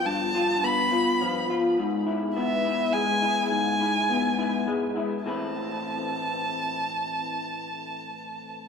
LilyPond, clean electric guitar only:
\new Staff \with { instrumentName = "Clean electric guitar" } { \time 3/4 \key a \minor \tempo 4 = 103 <g, f b f'>8 f'8 b8 f'8 f8 f'8 | gis,8 e'8 b8 e'8 gis8 e'8 | gis,8 e'8 b8 e'8 gis8 e'8 | <a, e a c' e' b'>2.~ |
<a, e a c' e' b'>2. | }